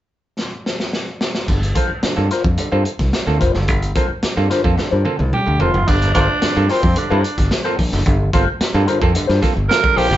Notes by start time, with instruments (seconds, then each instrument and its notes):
0.39 snare
0.66 snare
0.80 snare
0.93 snare
1.21 snare
1.35 snare
1.48 fingered electric bass G1, clav G2 D3, kick, crash
1.63 closed hi-hat
1.75 clav F4 A4, clean electric guitar F4 A#4 C5, kick, closed hi-hat
1.90 muted fingered electric bass stroke
2.03 clav G2 D3, muted fingered electric bass stroke, muted clean electric guitar stroke, snare, closed hi-hat
2.16 fingered electric bass G2, clav A#3 C4 F4 A4, muted clean electric guitar stroke
2.30 clav F4 A4, clean electric guitar F4 A#4 C5, snare, closed hi-hat
2.44 fingered electric bass F2, kick
2.58 clav G2 D3, muted fingered electric bass stroke, muted clean electric guitar stroke, closed hi-hat
2.72 fingered electric bass G2, clav A#3 C4 F4 A4, clean electric guitar F4 A#4 C5
2.85 clav F4 A4, muted clean electric guitar stroke, closed hi-hat
2.99 fingered electric bass C2, muted clean electric guitar stroke, kick, snare
3.13 muted clean electric guitar stroke, snare, closed hi-hat
3.27 fingered electric bass D2, clav A#3 C4 F4 A4, muted clean electric guitar stroke
3.40 fingered electric bass F1, clean electric guitar F4 A#4 C5, kick, closed hi-hat
3.54 fingered electric bass F#1, clav G2 D3, muted clean electric guitar stroke, snare
3.68 fingered electric bass G1, clav G2 D3, kick, closed hi-hat
3.82 clav F4 A4, closed hi-hat
3.95 clav A#3 C4 F4 A4, clean electric guitar F4 A#4 C5, kick, closed hi-hat
4.10 muted fingered electric bass stroke
4.23 muted clean electric guitar stroke, muted fingered electric bass stroke, snare, closed hi-hat
4.36 fingered electric bass G2, clav A#3 C4 F4 A4, muted clean electric guitar stroke
4.50 clav G2 D3, clean electric guitar F4 A#4 C5, snare, closed hi-hat
4.64 fingered electric bass F2, clav A#3 C4 F4 A4, kick
4.78 clav G2 D3, muted clean electric guitar stroke, muted fingered electric bass stroke, snare
4.91 fingered electric bass G2, clean electric guitar F4 A#4 C5
5.05 clav A#3 C4 F4 A4, high tom
5.19 fingered electric bass C2, clav F4 A4, muted clean electric guitar stroke, high tom
5.32 clav F4 A4, tenor saxophone G4, muted clean electric guitar stroke, mid tom
5.46 fingered electric bass D2, clav G2 D3, muted clean electric guitar stroke
5.60 fingered electric bass F1, clav A#3 C4 F4 A4, clean electric guitar F4 A#4 C5, tenor saxophone F4, floor tom
5.74 fingered electric bass F#1, muted clean electric guitar stroke, floor tom
5.87 fingered electric bass G1, clav G2 D3, tenor saxophone D4, kick, crash
6.02 closed hi-hat
6.14 fingered electric bass G1, tenor saxophone D4, clean electric guitar F4 A#4 C5, clav F4 A4, kick, closed hi-hat
6.42 clav G2 D3, muted clean electric guitar stroke, muted fingered electric bass stroke, snare, closed hi-hat
6.56 fingered electric bass G2, clav A#3 C4 F4 A4
6.69 tenor saxophone C4, clav F4 A4, clean electric guitar F4 A#4 C5, snare, open hi-hat
6.83 fingered electric bass F2, muted clean electric guitar stroke, kick
6.96 clav G2 D3, tenor saxophone D4, muted clean electric guitar stroke, muted fingered electric bass stroke, closed hi-hat
7.10 fingered electric bass G2, clav A#3 C4 F4 A4, clean electric guitar F4 A#4 C5
7.24 clav F4 A4, closed hi-hat
7.37 fingered electric bass G1, muted clean electric guitar stroke, kick, snare, closed hi-hat
7.51 muted clean electric guitar stroke, snare, closed hi-hat
7.64 clav A#3 C4 F4 A4, clean electric guitar F4 A#4 C5
7.78 fingered electric bass A#1, muted clean electric guitar stroke, kick, open hi-hat
7.92 fingered electric bass F#1, clav G2 D3, muted clean electric guitar stroke, snare
8.06 fingered electric bass G1, clav G2 D3, kick, closed hi-hat
8.20 clav F4 A4
8.33 fingered electric bass G1, clav A#3 C4 F4 A4, clean electric guitar F4 A#4 C5, kick, closed hi-hat
8.61 muted clean electric guitar stroke, muted fingered electric bass stroke, snare, closed hi-hat
8.74 fingered electric bass G2, clav A#3 C4 F4 A4, muted clean electric guitar stroke
8.87 clav G2 D3, clean electric guitar F4 A#4 C5, closed hi-hat
9.01 fingered electric bass F2, clav A#3 C4 F4 A4, muted clean electric guitar stroke, kick
9.15 clav G2 D3, muted clean electric guitar stroke, muted fingered electric bass stroke, closed hi-hat
9.27 fingered electric bass G2, clean electric guitar F4 A#4 C5, snare
9.42 clav A#3 C4 F4 A4, kick, snare, closed hi-hat
9.56 fingered electric bass G1, clav F4 A4, muted clean electric guitar stroke
9.69 clav F4 A4, tenor saxophone A#4, muted clean electric guitar stroke, snare, closed hi-hat
9.82 clav G2 D3, muted clean electric guitar stroke, kick
9.96 fingered electric bass A#1, clean electric guitar F4 A#4 C5, clav F4 A4, tenor saxophone G4, open hi-hat
10.09 fingered electric bass F#1, muted clean electric guitar stroke, snare